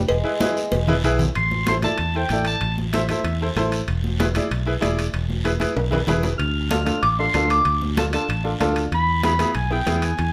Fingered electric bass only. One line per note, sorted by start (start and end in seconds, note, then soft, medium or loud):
0.10 0.22 E1 loud
0.73 1.04 E1 medium
1.04 1.29 B1 medium
1.36 1.86 A1 loud
1.99 2.24 E2 medium
2.30 2.55 A1 medium
2.61 3.12 A1 loud
3.24 3.49 E2 medium
3.56 3.81 A1 medium
3.88 4.38 E1 loud
4.51 4.76 B1 medium
4.82 5.07 E1 medium
5.14 5.64 E1 loud
5.76 6.02 B1 medium
6.08 6.33 E1 medium
6.39 6.90 D2 loud
7.03 7.28 A1 medium
7.34 7.60 D2 medium
7.65 8.16 D2 loud
8.29 8.54 A1 medium
8.61 8.86 D2 medium
8.92 9.42 E2 medium
9.55 9.81 B1 medium
9.87 10.12 E2 medium
10.19 10.33 E2 loud